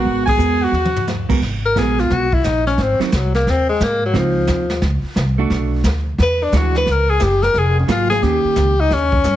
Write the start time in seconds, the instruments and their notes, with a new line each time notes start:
Already playing: hollow-body jazz guitar G#3 B3 F#4 A#4, tenor saxophone F#4, alto saxophone F#5
0.05 upright bass G#1, brush sweep, kick
0.26 tenor saxophone G#4, alto saxophone G#5, kick, ride
0.37 upright bass E2, hollow-body jazz guitar G#3 B3 F#4 A#4, hi-hat pedal
0.62 tenor saxophone F#4, alto saxophone F#5
0.72 upright bass D#2, mid tom
0.85 mid tom
0.96 floor tom
1.07 snare, hi-hat pedal
1.29 hollow-body jazz guitar G#3 B3 F#4 A#4, kick, crash
1.42 upright bass G#1, brush sweep, kick, snare
1.65 tenor saxophone A#4
1.75 upright bass A#1, hollow-body jazz guitar G#3 B3 F#4 A#4, tenor saxophone G#4, kick, snare, hi-hat pedal
1.99 tenor saxophone F4, snare
2.10 upright bass B1, tenor saxophone F#4, brush sweep, kick, snare
2.32 tenor saxophone E4, kick
2.44 upright bass A#1, tenor saxophone D#4, kick, snare, hi-hat pedal
2.67 tenor saxophone C#4, snare
2.78 upright bass G#1, brush sweep, kick, snare
2.82 tenor saxophone C4
2.99 tenor saxophone D#3, hollow-body jazz guitar F#3 C4 D#4, muted upright bass stroke, snare
3.12 upright bass C2, tenor saxophone F#3, kick, snare, hi-hat pedal
3.35 tenor saxophone A#3, snare
3.47 upright bass D#2, tenor saxophone C4, brush sweep, kick, snare
3.69 tenor saxophone G#3
3.80 upright bass G#2, tenor saxophone A#3, kick, snare, hi-hat pedal
4.06 tenor saxophone F#3
4.13 upright bass C#2, hollow-body jazz guitar F3 C4 D#4, brush sweep, kick, snare
4.18 tenor saxophone F3
4.47 upright bass D#2, kick, snare, hi-hat pedal
4.70 snare
4.82 upright bass C#2, brush sweep, kick, snare
5.03 muted upright bass stroke
5.16 upright bass C2, kick, snare, hi-hat pedal
5.38 hollow-body jazz guitar A3 D4 F#4
5.50 upright bass B1, brush sweep, kick, snare
5.84 upright bass D2, kick, snare, hi-hat pedal
6.18 upright bass E2, brush sweep, kick, snare
6.23 tenor saxophone B4
6.43 tenor saxophone D4
6.52 upright bass D2, hollow-body jazz guitar E3 G#3 D4 F#4, kick, snare, hi-hat pedal
6.57 tenor saxophone F#4
6.75 tenor saxophone B4, snare
6.86 upright bass C#2, brush sweep, kick, snare
6.91 tenor saxophone A#4
7.10 tenor saxophone G#4
7.20 upright bass F#1, tenor saxophone G4, kick, snare, hi-hat pedal
7.43 tenor saxophone A#4, snare
7.54 upright bass F1, brush sweep, kick, snare
7.58 tenor saxophone G#4
7.79 tenor saxophone C#4
7.88 upright bass G#1, hollow-body jazz guitar F#3 A#3 F4 G#4, tenor saxophone F4, kick, snare, hi-hat pedal
8.10 tenor saxophone G#4, snare
8.22 upright bass D#2, hollow-body jazz guitar D#3 A#3 C#4 G4, tenor saxophone G4, brush sweep, kick, snare
8.44 muted upright bass stroke
8.56 upright bass C#2, kick, snare, hi-hat pedal
8.80 tenor saxophone D#4
8.90 upright bass D#2, tenor saxophone C#4, brush sweep, kick, snare
9.12 kick
9.24 upright bass G2, kick, snare, hi-hat pedal